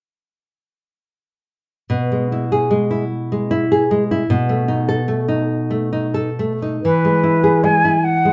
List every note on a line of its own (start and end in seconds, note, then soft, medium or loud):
1.90 4.26 B2 soft
2.12 2.43 G#3 soft
2.32 2.64 E4 soft
2.52 2.84 G#4 soft
2.71 3.03 G#3 soft
2.91 3.50 E4 soft
3.32 3.64 G#3 soft
3.51 3.83 E4 soft
3.72 4.03 G#4 soft
3.91 4.22 G#3 soft
4.11 4.30 E4 soft
4.30 6.79 B2 medium
4.49 4.80 A3 soft
4.68 4.99 D#4 soft
4.89 5.20 A4 soft
5.08 5.40 A3 soft
5.28 5.91 D#4 soft
5.70 6.06 A3 soft
5.93 6.29 D#4 soft
6.14 6.52 A4 soft
6.39 6.75 A3 soft
6.62 6.83 D#4 soft
6.83 8.33 E3 soft
6.83 7.65 B4 medium
7.05 7.37 G#3 soft
7.23 7.56 E4 soft
7.44 7.76 G#4 soft
7.64 7.95 G#3 soft
7.64 8.05 G#5 medium
7.85 8.33 E4 soft
8.04 8.33 F#5 medium
8.25 8.33 G#3 soft